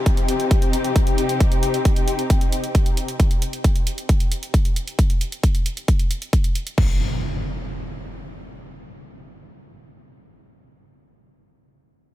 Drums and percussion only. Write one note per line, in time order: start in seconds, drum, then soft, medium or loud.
0.06 kick loud
0.06 closed hi-hat medium
0.17 closed hi-hat soft
0.28 closed hi-hat medium
0.40 closed hi-hat soft
0.51 kick loud
0.51 closed hi-hat medium
0.62 closed hi-hat soft
0.73 closed hi-hat medium
0.84 closed hi-hat soft
0.96 kick loud
0.96 closed hi-hat medium
1.07 closed hi-hat soft
1.18 closed hi-hat medium
1.29 closed hi-hat medium
1.40 kick loud
1.40 closed hi-hat medium
1.52 closed hi-hat soft
1.63 closed hi-hat medium
1.74 closed hi-hat soft
1.85 kick loud
1.85 closed hi-hat medium
1.96 closed hi-hat medium
2.08 closed hi-hat medium
2.19 closed hi-hat soft
2.30 kick loud
2.30 closed hi-hat medium
2.41 closed hi-hat soft
2.52 closed hi-hat medium
2.64 closed hi-hat soft
2.75 kick loud
2.75 closed hi-hat medium
2.86 closed hi-hat soft
2.97 closed hi-hat medium
3.08 closed hi-hat medium
3.20 kick loud
3.20 closed hi-hat medium
3.31 closed hi-hat soft
3.42 closed hi-hat medium
3.53 closed hi-hat medium
3.64 kick loud
3.64 closed hi-hat medium
3.76 closed hi-hat soft
3.87 closed hi-hat medium
3.98 closed hi-hat soft
4.09 kick loud
4.09 closed hi-hat medium
4.20 closed hi-hat medium
4.32 closed hi-hat medium
4.43 closed hi-hat soft
4.54 kick loud
4.54 closed hi-hat medium
4.65 closed hi-hat soft
4.76 closed hi-hat medium
4.88 closed hi-hat medium
4.99 kick loud
4.99 closed hi-hat medium
5.10 closed hi-hat medium
5.21 closed hi-hat medium
5.32 closed hi-hat medium
5.43 kick loud
5.43 closed hi-hat medium
5.55 closed hi-hat soft
5.66 closed hi-hat medium
5.77 closed hi-hat medium
5.88 kick loud
5.88 closed hi-hat medium
5.99 closed hi-hat medium
6.11 closed hi-hat medium
6.22 closed hi-hat medium
6.33 kick loud
6.33 closed hi-hat medium
6.44 closed hi-hat medium
6.55 closed hi-hat medium
6.67 closed hi-hat medium
6.78 kick loud
6.78 crash medium